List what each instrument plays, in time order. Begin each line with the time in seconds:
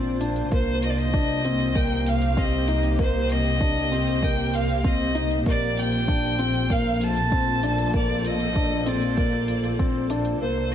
Already playing: double bass section A#1, ambient pad A#3 D4 F4 C5 A5, grand piano C4, violin D5
0.20 grand piano D4, closed hi-hat
0.36 closed hi-hat
0.51 double bass section C2, grand piano A#3, ambient pad C4 G4, violin C5, kick, closed hi-hat
0.82 violin D#5, closed hi-hat
0.90 violin D5
0.98 violin D#5, closed hi-hat
1.14 grand piano D4, kick, closed hi-hat
1.45 grand piano C4, closed hi-hat
1.60 closed hi-hat
1.75 grand piano A#3, violin G5, kick, closed hi-hat
2.06 violin F5, closed hi-hat
2.22 closed hi-hat
2.37 grand piano C4, violin D#5, kick, closed hi-hat
2.68 grand piano D#4, closed hi-hat
2.83 closed hi-hat
2.99 grand piano A#3, ambient pad C5, violin C5, kick, closed hi-hat
3.29 violin D#5, closed hi-hat
3.45 closed hi-hat
3.61 grand piano D4, kick, closed hi-hat
3.92 grand piano C4, closed hi-hat
4.07 closed hi-hat
4.23 grand piano A#3, violin G5, kick, closed hi-hat
4.54 violin F5, closed hi-hat
4.69 closed hi-hat
4.78 violin F5
4.84 grand piano C4, violin D#5, kick, closed hi-hat
5.15 grand piano D#4, closed hi-hat
5.31 closed hi-hat
5.46 double bass section A#1, grand piano A#3, ambient pad F4 A4, violin D5, kick, closed hi-hat
5.77 violin G5, closed hi-hat
5.92 closed hi-hat
6.08 grand piano D4, kick, closed hi-hat
6.39 grand piano C4, closed hi-hat
6.54 closed hi-hat
6.70 grand piano A#3, violin F5, kick, closed hi-hat
7.01 violin A5, closed hi-hat
7.16 closed hi-hat
7.31 grand piano C4, kick, closed hi-hat
7.63 grand piano D4, closed hi-hat
7.78 closed hi-hat
7.93 grand piano A#3, violin D5, kick, closed hi-hat
8.25 violin D#5, closed hi-hat
8.40 closed hi-hat
8.55 grand piano D4, kick, closed hi-hat
8.86 grand piano C4, violin D5, closed hi-hat
9.02 closed hi-hat
9.17 grand piano A#3, kick, closed hi-hat
9.48 closed hi-hat
9.64 closed hi-hat
9.79 grand piano C4, kick, closed hi-hat
10.10 grand piano D4, closed hi-hat
10.25 closed hi-hat
10.40 double bass section C2, ambient pad A#3 C4 G4 C5, grand piano A#3, violin C5